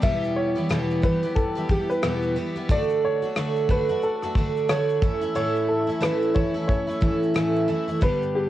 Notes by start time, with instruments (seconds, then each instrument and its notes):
0.02 twelve-string acoustic guitar E2 B2 E3 G3 B3 G4, upright piano E5, kick, shaker
0.23 shaker
0.36 upright piano C#5
0.55 twelve-string acoustic guitar E3 G3 B3 G4, shaker
0.69 twelve-string acoustic guitar E2 B2 E3 G3 B3 G4, cross-stick, shaker
0.90 shaker
1.02 twelve-string acoustic guitar E3 G3 B3 G4, upright piano B4, kick, shaker
1.23 twelve-string acoustic guitar E3 G3 B3 G4, shaker
1.35 upright piano A4, kick, shaker
1.55 twelve-string acoustic guitar E3 G3 B3 G4, shaker
1.69 twelve-string acoustic guitar E3 G3 B3 G4, upright piano G4, kick
1.90 upright piano B4, shaker
2.02 twelve-string acoustic guitar E2 B2 E3 G3 B3 G4, cross-stick, shaker
2.22 shaker
2.36 twelve-string acoustic guitar E3 G3 B3 G4
2.55 twelve-string acoustic guitar E3 G3 B3 G4, shaker
2.69 twelve-string acoustic guitar D3 A3 D4 F#4, upright piano D5, kick, shaker
2.90 shaker
3.05 upright piano C#5
3.22 twelve-string acoustic guitar A3 D4 F#4, shaker
3.36 twelve-string acoustic guitar D3 A3 D4 F#4, cross-stick, shaker
3.56 shaker
3.69 twelve-string acoustic guitar D3 A3 D4 F#4, upright piano B4, kick
3.89 twelve-string acoustic guitar A3 D4 F#4, shaker
4.02 upright piano A4, shaker
4.23 twelve-string acoustic guitar A3 D4 F#4, cross-stick, shaker
4.35 twelve-string acoustic guitar D3 A3 D4 F#4, kick
4.57 shaker
4.69 twelve-string acoustic guitar D3 A3 D4 F#4, upright piano C#5, cross-stick, shaker
4.89 shaker
5.02 twelve-string acoustic guitar E3 A3 C#4 E4, kick
5.21 twelve-string acoustic guitar A3 C#4 E4, shaker
5.35 twelve-string acoustic guitar A2 E3 A3 C#4 E4, upright piano C#5, shaker
5.56 shaker
5.69 upright piano A4
5.87 twelve-string acoustic guitar A3 C#4 E4, shaker
6.01 twelve-string acoustic guitar A2 E3 A3 C#4 E4, upright piano B4, cross-stick, shaker
6.22 shaker
6.34 twelve-string acoustic guitar E3 A3 C#4 E4, upright piano C#5, kick
6.54 twelve-string acoustic guitar A3 C#4 E4, shaker
6.68 upright piano C#5, kick, shaker
6.87 twelve-string acoustic guitar A3 C#4 E4, shaker
7.01 twelve-string acoustic guitar E3 A3 C#4 E4, kick
7.23 shaker
7.34 twelve-string acoustic guitar A2 E3 A3 C#4 E4, cross-stick, shaker
7.56 shaker
7.68 twelve-string acoustic guitar E3 A3 C#4 E4
7.88 twelve-string acoustic guitar A3 C#4 E4, shaker
8.01 twelve-string acoustic guitar G2 D3 G3 B3 D4 G4, upright piano B4, kick, shaker
8.22 shaker
8.35 upright piano G4